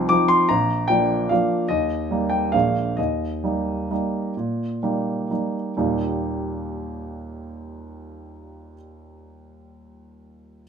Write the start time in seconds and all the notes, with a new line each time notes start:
Already playing: C2 F3 C4 D#4 C6
0.09 F3 C4 D#4 D6
0.28 C6
0.49 A#1 A#5
0.88 F3 A#3 D4 G5
1.29 F3 A#3 D4 F5
1.68 D#2 D#5
2.11 G3 A#3 D#4
2.30 G5
2.52 A#1 G#3 A#3 D4 F5
2.97 D#2 D#5
3.44 G3 A#3 D#4
3.91 G3 A#3 D#4
4.37 A#2
4.83 G3 A#3 D#4
5.30 G3 A#3 D#4
5.77 D#2 A#2 G3 A#3 D#4 G4